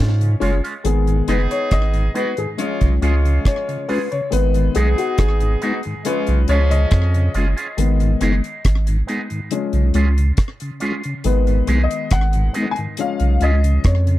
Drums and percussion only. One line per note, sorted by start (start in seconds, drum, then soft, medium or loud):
0.21 closed hi-hat medium
0.42 closed hi-hat medium
0.65 closed hi-hat medium
0.85 closed hi-hat loud
1.07 closed hi-hat soft
1.28 cross-stick medium
1.28 closed hi-hat medium
1.51 closed hi-hat medium
1.71 kick loud
1.71 cross-stick loud
1.71 closed hi-hat medium
1.94 closed hi-hat soft
2.15 closed hi-hat medium
2.37 closed hi-hat medium
2.58 closed hi-hat medium
2.81 kick medium
2.81 closed hi-hat soft
3.02 closed hi-hat medium
3.25 closed hi-hat soft
3.45 kick medium
3.45 cross-stick loud
3.45 closed hi-hat medium
3.69 closed hi-hat soft
3.89 open hi-hat soft
4.12 closed hi-hat medium
4.32 closed hi-hat loud
4.54 closed hi-hat soft
4.75 closed hi-hat medium
4.98 closed hi-hat medium
5.18 kick loud
5.18 cross-stick loud
5.18 closed hi-hat medium
5.40 closed hi-hat soft
5.62 closed hi-hat medium
5.83 closed hi-hat soft
6.05 closed hi-hat medium
6.27 closed hi-hat soft
6.48 closed hi-hat medium
6.71 closed hi-hat medium
6.91 kick loud
6.91 cross-stick loud
6.91 closed hi-hat medium
7.14 closed hi-hat medium
7.34 closed hi-hat medium
7.58 closed hi-hat medium
7.78 closed hi-hat loud
8.00 closed hi-hat soft
8.21 cross-stick medium
8.21 closed hi-hat medium
8.44 closed hi-hat soft
8.65 kick loud
8.65 cross-stick loud
8.65 closed hi-hat medium
8.87 closed hi-hat medium
9.08 closed hi-hat medium
9.30 closed hi-hat soft
9.51 closed hi-hat medium
9.73 closed hi-hat soft
9.94 closed hi-hat medium
10.18 closed hi-hat medium
10.37 kick loud
10.37 cross-stick medium
10.37 closed hi-hat medium
10.60 closed hi-hat medium
10.80 closed hi-hat medium
11.04 closed hi-hat medium
11.24 closed hi-hat loud
11.47 closed hi-hat soft
11.67 closed hi-hat medium
11.91 closed hi-hat medium
12.11 kick loud
12.11 cross-stick loud
12.11 closed hi-hat medium
12.33 closed hi-hat medium
12.54 closed hi-hat medium
12.76 closed hi-hat soft
12.97 closed hi-hat medium
13.20 closed hi-hat soft
13.41 closed hi-hat medium
13.64 closed hi-hat medium
13.84 kick loud
13.84 cross-stick loud
13.84 closed hi-hat medium
14.07 closed hi-hat soft